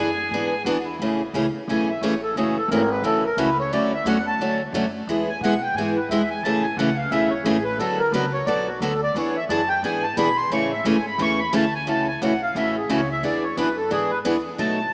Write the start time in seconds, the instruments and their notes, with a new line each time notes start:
Already playing: upright bass F#2, violin G#4, accordion G#5
0.31 upright bass G#2, steel-string acoustic guitar E3 B3 D4 G#4
0.64 upright bass E2, steel-string acoustic guitar E3 B3 D4 G#4, violin F#4
0.85 violin E4
0.99 upright bass A1, steel-string acoustic guitar C#3 E3 A3 C#4 G#4
1.34 upright bass C#2, steel-string acoustic guitar C#3 E3 A3 C#4 G#4
1.54 muted upright bass stroke
1.68 upright bass B1, steel-string acoustic guitar C#3 E3 A3 C#4 G#4, accordion G#5
1.89 accordion E5
2.01 upright bass A1, steel-string acoustic guitar C#3 E3 A3 C#4 G#4, accordion C#5
2.23 accordion A4
2.36 upright bass F#1, steel-string acoustic guitar C#3 E3 A3 C#4 F#4, accordion G#4
2.57 accordion A4
2.68 upright bass G#1, steel-string acoustic guitar C#3 E3 A3, accordion A#4
2.73 steel-string acoustic guitar C#4 F#4
2.91 accordion B4
3.02 upright bass B1, steel-string acoustic guitar C#3 E3 A3 C#4 F#4, accordion A4
3.26 accordion A#4
3.37 upright bass C#2, steel-string acoustic guitar C#3 E3 A3 C#4 F#4, accordion B4
3.60 accordion C#5
3.71 upright bass D2, steel-string acoustic guitar D3 F#3 A3 C#4 F#4, accordion D5
3.94 accordion E5
4.05 upright bass E2, steel-string acoustic guitar D3 F#3 A3 C#4 F#4, accordion F#5
4.27 accordion A5
4.39 upright bass D2, steel-string acoustic guitar D3 F#3 A3 C#4 F#4
4.73 upright bass F#2, steel-string acoustic guitar D3 F#3 A3 C#4 F#4
5.07 upright bass E2, steel-string acoustic guitar E3 G#3 B3 E4 G#4
5.29 accordion G#5
5.41 upright bass B2, steel-string acoustic guitar E3 G#3 B3 E4 G#4, accordion F#5
5.62 accordion G5
5.74 upright bass G#2, steel-string acoustic guitar E3 G#3, accordion G#5
5.79 steel-string acoustic guitar B3 E4 G#4
5.96 accordion B4
6.09 upright bass E2, steel-string acoustic guitar E3 G#3 B3 E4 G#4, accordion E5
6.30 accordion G#5
6.43 upright bass A1, steel-string acoustic guitar C#3 E3 A3 C#4 G#4, accordion A5
6.63 accordion G#5
6.77 upright bass C#2, steel-string acoustic guitar C#3 E3 A3 C#4 G#4, accordion F#5
6.97 accordion F5
7.10 upright bass B1, steel-string acoustic guitar C#3 E3 A3 C#4 G#4, accordion E5
7.30 accordion C#5
7.44 upright bass A1, steel-string acoustic guitar C#3 E3 A3 C#4 G#4, accordion G#4
7.64 accordion B4
7.78 upright bass D2, steel-string acoustic guitar D3 F#3 B3 F#4 A4, accordion A4
7.98 accordion A#4
8.12 upright bass C#2, steel-string acoustic guitar D3 F#3 B3 F#4 A4, accordion B4
8.33 accordion C#5
8.46 upright bass B1, steel-string acoustic guitar D3 F#3 B3 F#4 A4, accordion D5
8.67 accordion F#4
8.80 upright bass D2, steel-string acoustic guitar D3 F#3 B3 F#4 A4, accordion A4
9.03 accordion D5
9.15 upright bass E2, steel-string acoustic guitar E3 B3 D4 G#4, accordion C#5
9.37 accordion E5
9.49 upright bass F#2, steel-string acoustic guitar E3 B3 D4 G#4, accordion A5
9.69 accordion G5
9.83 upright bass G#2, steel-string acoustic guitar E3 B3 D4 G#4, accordion G#5
10.03 accordion A5
10.17 upright bass B2, steel-string acoustic guitar E3 B3 D4 G#4, accordion B5
10.37 accordion C6
10.50 upright bass A2, steel-string acoustic guitar C#3 E3 A3 C#4 G#4, accordion C#6
10.73 accordion E5
10.85 upright bass G#2, steel-string acoustic guitar C#3 E3 A3 C#4 G#4, accordion G#5
11.07 accordion B5
11.18 upright bass E2, steel-string acoustic guitar C#3 E3 A3 C#4 G#4, accordion C#6
11.40 accordion B5
11.53 upright bass D2, steel-string acoustic guitar C#3 E3 A3 C#4 G#4, accordion A5
11.75 accordion G#5
11.87 upright bass C#2, steel-string acoustic guitar C#3 E3 A3 C#4 F#4, accordion A5
12.08 accordion G#5
12.22 upright bass B1, steel-string acoustic guitar C#3 E3 A3 C#4 F#4, accordion F#5
12.43 accordion F5
12.55 upright bass A1, steel-string acoustic guitar C#3 E3 A3 C#4 F#4, accordion E5
12.77 accordion G#4
12.89 upright bass C#2, steel-string acoustic guitar C#3 E3 A3 C#4 F#4, accordion C#5
13.12 accordion E5
13.23 upright bass E2, steel-string acoustic guitar E3 B3 D4 G#4, accordion D5
13.44 accordion C#5
13.57 upright bass F#2, steel-string acoustic guitar E3 B3 D4 G#4, accordion B4
13.77 accordion A4
13.91 upright bass G#2, steel-string acoustic guitar E3 B3 D4 G#4, accordion G#4
14.10 accordion B4
14.25 upright bass E2, steel-string acoustic guitar E3 B3 D4 G#4
14.58 steel-string acoustic guitar B2 F#3 A3 D#4 F#4, upright bass B2, accordion A5